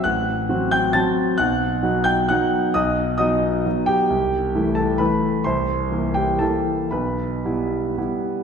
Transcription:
0.04 0.48 A1 soft
0.04 0.68 F#5 medium
0.04 0.71 F#6 medium
0.49 0.91 F#3 soft
0.49 0.91 C4 soft
0.49 0.91 F#4 soft
0.71 0.93 G5 medium
0.71 0.95 G6 medium
0.93 1.35 F#3 soft
0.93 1.36 C4 soft
0.93 1.36 F#4 soft
0.93 1.36 A5 medium
0.93 1.39 A6 medium
1.38 1.82 B1 medium
1.38 2.02 F#5 medium
1.38 2.05 F#6 medium
1.83 2.25 F#3 soft
1.83 2.25 B3 soft
1.83 2.26 D#4 soft
2.04 2.27 G5 medium
2.04 2.28 G6 medium
2.29 2.71 F#3 soft
2.29 2.71 B3 soft
2.29 2.71 D#4 soft
2.29 2.72 F#5 medium
2.29 2.74 F#6 medium
2.74 3.18 B1 medium
2.74 3.16 D#5 medium
2.74 3.16 D#6 medium
3.18 3.61 F#3 soft
3.18 3.61 B3 soft
3.18 3.62 D#4 soft
3.18 3.84 D#5 medium
3.18 3.87 D#6 medium
3.66 4.06 F#3 soft
3.66 4.06 B3 soft
3.66 4.07 D#4 soft
3.86 4.72 G4 medium
3.86 4.76 G5 medium
4.10 4.53 C2 soft
4.55 4.96 E3 soft
4.55 4.97 A3 soft
4.55 4.97 E4 soft
4.75 4.98 A4 soft
4.75 4.99 A5 medium
4.98 5.42 E3 soft
4.98 5.42 A3 soft
4.98 5.43 E4 soft
4.98 5.43 B4 medium
4.98 5.45 B5 medium
5.44 5.90 C2 soft
5.44 6.11 C5 soft
5.44 6.15 C6 medium
5.91 6.37 E3 soft
5.91 6.37 A#3 soft
5.91 6.37 E4 soft
6.14 6.39 G4 soft
6.14 6.40 G5 medium
6.39 6.88 E3 soft
6.39 6.88 A#3 soft
6.39 6.89 E4 soft
6.39 6.88 A4 soft
6.39 6.91 A5 medium
6.91 7.43 B1 soft
6.91 8.43 B4 soft
6.91 8.43 B5 medium
7.45 7.94 G3 soft
7.45 7.94 B3 soft
7.45 7.94 E4 soft
7.98 8.43 G3 soft
7.98 8.43 B3 soft
7.98 8.43 E4 soft

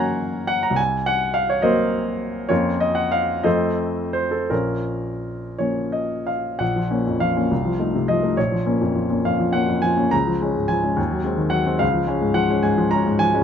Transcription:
0.00 0.80 F#2 soft
0.00 0.74 F#3 soft
0.00 0.74 A#3 soft
0.00 0.74 C#4 soft
0.00 0.45 C#5 medium
0.00 0.81 F5 medium
0.00 0.47 F#5 medium
0.00 0.76 G#5 medium
0.00 0.48 A#5 medium
0.47 0.63 F#5 medium
0.63 0.78 A#5 medium
0.71 1.58 C2 soft
0.76 1.06 G#5 medium
1.06 1.35 F#5 medium
1.34 1.49 F5 medium
1.50 1.64 C#5 medium
1.62 2.46 F#3 soft
1.62 2.46 A#3 soft
1.62 2.46 C4 soft
1.62 2.46 A#4 medium
1.62 2.46 C5 medium
1.62 2.49 D#5 medium
2.49 3.42 F2 medium
2.49 3.41 F3 soft
2.49 3.41 A#3 soft
2.49 3.41 C#4 soft
2.49 2.79 F4 medium
2.49 2.79 A#4 soft
2.49 2.80 C#5 medium
2.80 2.97 D#5 medium
2.95 3.12 F#5 medium
3.12 3.44 F5 medium
3.43 4.47 F2 soft
3.43 4.47 F3 soft
3.43 4.47 A3 soft
3.43 4.47 C4 soft
3.43 4.10 A4 medium
3.43 4.10 C5 soft
3.43 4.13 D#5 medium
4.13 4.32 C5 medium
4.31 4.50 A4 soft
4.50 5.56 A#1 soft
4.50 5.55 C#4 soft
4.50 5.55 F4 soft
4.50 6.28 A#4 soft
5.58 6.57 F3 soft
5.58 6.58 A#3 soft
5.58 6.58 C#4 soft
5.58 5.93 C#5 soft
5.92 6.28 D#5 medium
6.27 6.60 F5 medium
6.59 7.47 A#1 soft
6.59 7.20 F#5 medium
6.76 7.00 F3 soft
6.91 7.04 A#3 soft
6.91 7.04 C#4 soft
7.07 7.30 F2 soft
7.20 7.45 F3 soft
7.20 8.09 F5 medium
7.37 7.50 A#3 soft
7.37 7.50 C#4 soft
7.51 8.36 C2 soft
7.65 7.89 F3 soft
7.80 7.93 A3 soft
7.80 7.93 D#4 soft
7.95 8.18 C3 soft
8.08 8.32 F3 soft
8.08 8.38 D#5 medium
8.23 8.36 A3 soft
8.23 8.36 D#4 soft
8.37 10.08 A#1 soft
8.37 9.25 C#5 medium
8.52 8.76 F3 soft
8.66 8.80 A#3 soft
8.66 8.80 C#4 soft
8.81 9.05 F2 soft
8.96 9.19 F3 soft
9.10 9.23 A#3 soft
9.10 9.24 C#4 soft
9.25 9.49 F2 soft
9.25 9.54 F5 medium
9.40 9.63 F3 soft
9.53 9.67 A#3 soft
9.53 9.67 C#4 soft
9.53 9.83 F#5 medium
9.68 9.92 F2 soft
9.82 10.06 F3 soft
9.82 10.12 G#5 medium
9.97 10.10 A#3 soft
9.97 10.10 C#4 soft
10.11 10.95 C#2 soft
10.11 10.69 A#5 medium
10.27 10.50 F3 soft
10.42 10.54 G#3 soft
10.42 10.55 C#4 soft
10.56 10.79 G#2 soft
10.68 10.92 F3 soft
10.68 11.53 G#5 medium
10.83 10.96 G#3 soft
10.83 10.96 C#4 soft
10.96 11.78 D#2 medium
11.11 11.34 F#3 soft
11.24 11.37 G#3 soft
11.24 11.38 C4 soft
11.37 11.61 D#3 soft
11.50 11.75 F#3 soft
11.50 11.80 F#5 medium
11.65 11.79 G#3 soft
11.65 11.79 C4 soft
11.79 13.44 C#2 soft
11.79 12.36 F5 medium
11.93 12.17 F3 soft
12.07 12.21 G#3 soft
12.07 12.21 C#4 soft
12.21 12.45 G#2 soft
12.34 12.59 F3 soft
12.34 12.64 F#5 medium
12.49 12.63 G#3 soft
12.49 12.63 C#4 soft
12.63 12.87 G#2 soft
12.63 12.92 G#5 medium
12.78 13.01 F3 soft
12.91 13.05 G#3 soft
12.91 13.05 C#4 soft
12.91 13.21 A#5 medium
13.06 13.30 G#2 soft
13.19 13.44 F3 soft
13.19 13.44 G#5 medium
13.34 13.44 G#3 soft
13.34 13.44 C#4 soft

